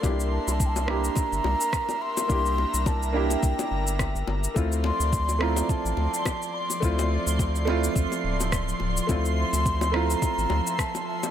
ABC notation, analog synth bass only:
X:1
M:4/4
L:1/16
Q:"Swing 16ths" 1/4=106
K:Dm
V:1 name="Analog synth bass" clef=bass
C,,2 z C,,4 z2 G,,, C,, z4 z | C,,2 z C,,4 z C,, z G,,,3 G,,, G,,, z | D,,2 z D,,4 z2 A,,, D,, z4 z | D,,2 z D,,4 z D,, z D,,,3 z D,,, z |
D,,2 z D,,4 z2 A,,, D,, z4 z |]